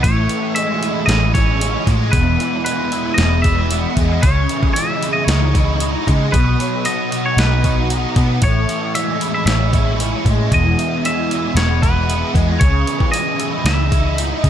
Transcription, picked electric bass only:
0.04 0.26 A1 medium
1.08 1.75 A1 loud
1.87 2.10 A2 medium
2.13 2.36 E1 medium
3.18 3.85 E1 medium
3.97 4.19 E2 medium
4.23 4.46 C#2 medium
5.28 5.95 C#2 medium
6.08 6.30 C#3 medium
6.33 6.55 B1 medium
7.37 8.04 B1 loud
8.16 8.38 B2 medium
8.42 8.65 A1 medium
9.46 10.13 A1 medium
10.25 10.48 A2 medium
10.52 10.74 E1 medium
11.55 12.23 E1 loud
12.34 12.57 E2 medium
12.61 12.83 C#2 loud
13.65 14.32 C#2 medium
14.44 14.50 C#3 medium

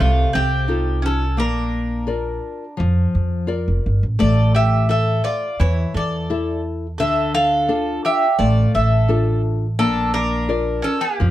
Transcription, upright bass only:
0.00 0.24 C2 loud
0.35 1.40 C2 medium
1.40 2.37 A#1 loud
2.80 3.04 F2 loud
3.15 3.67 F2 medium
3.68 3.83 F1 medium
3.86 4.01 G1 medium
4.03 4.20 A1 medium
4.21 5.18 A1 loud
5.60 5.84 E2 loud
5.94 7.00 E2 medium
7.00 7.98 D2 medium
8.39 8.64 A1 loud
8.75 9.81 A1 medium
9.81 10.79 A#1 loud
11.21 11.31 F2 loud

